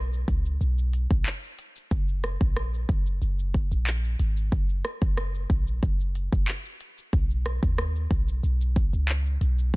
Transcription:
Already playing: B1
0.13 shaker
0.28 C#2, kick, closed hi-hat, shaker
0.46 shaker
0.61 B1, shaker
0.78 shaker
0.93 closed hi-hat, shaker
1.11 A#1, kick, shaker
1.26 clap, shaker
1.43 shaker
1.59 closed hi-hat, shaker
1.76 shaker
1.91 F#1, kick, shaker
2.08 shaker
2.24 cross-stick, closed hi-hat, shaker
2.41 A#1, kick, shaker
2.56 cross-stick, shaker
2.74 shaker
2.89 F#1, kick, closed hi-hat, shaker
3.06 shaker
3.22 F#1, shaker
3.39 shaker
3.54 kick, closed hi-hat, shaker
3.72 A#1, shaker
3.87 clap, shaker
4.04 shaker
4.19 G#1, closed hi-hat, shaker
4.37 shaker
4.52 F#1, kick, shaker
4.69 shaker
4.85 cross-stick, closed hi-hat, shaker
5.02 F#1, kick, shaker
5.17 cross-stick, shaker
5.35 shaker
5.50 A#1, kick, closed hi-hat, shaker
5.67 shaker
5.83 F#1, kick, shaker
6.00 shaker
6.15 closed hi-hat, shaker
6.32 F1, kick, shaker
6.48 clap, shaker
6.65 shaker
6.81 closed hi-hat, shaker
6.98 shaker
7.13 B1, kick, shaker
7.30 shaker
7.46 cross-stick, closed hi-hat, shaker
7.63 D#2, kick, shaker
7.78 cross-stick, shaker
7.96 shaker
8.11 B1, kick, closed hi-hat, shaker
8.28 shaker
8.43 B1, shaker
8.61 shaker
8.76 kick, closed hi-hat, shaker
8.93 C#2, shaker
9.08 clap, shaker
9.26 shaker
9.41 B1, closed hi-hat, shaker
9.59 shaker

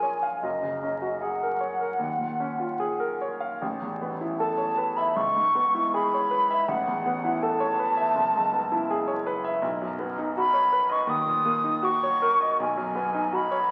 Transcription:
Already playing: A#1 F2 C#4 F4 G#4 A#4 G#5
0.03 C#5
0.23 F5
0.42 F#1 F#2 D#5
0.63 C#3
0.83 C#4
1.02 F#4
1.21 G#4 F#5
1.43 A#4
1.61 C#5
1.81 A#4
1.99 D#2
2.19 A#2
2.40 C#4
2.60 F4
2.80 G#4
3.00 A#4
3.21 C#5
3.40 F5
3.62 A1
3.82 E2
4.02 B3
4.21 E4
4.39 A4 A5
4.58 C#5
4.78 B4
4.97 E5 B5
5.16 C#2 C#6
5.36 G#2
5.55 B3
5.75 E4
5.94 G#4 B5
6.14 C#5
6.31 B4
6.51 E5
6.68 A1 F#5
6.87 E2
7.06 B3
7.24 E4
7.42 A4 A5
7.60 C#5
7.79 B4
7.97 E5
8.15 F#1
8.35 C#2
8.53 B3
8.72 E4
8.90 G#4
9.08 C#5
9.26 B4
9.44 E5
9.62 B1
9.82 F#2
9.99 B3
10.18 D#4
10.37 F#4 B5
10.54 C#5
10.72 B4
10.89 D#5 C#6
11.07 D#2 D#6
11.26 A#2
11.45 A#3
11.64 D#4
11.82 F#4 C#6
12.03 C#5
12.22 A#4
12.41 D#5
12.60 B1 G#5
12.77 F#2
12.95 B3
13.14 D#4
13.33 F#4 B5
13.51 C#5

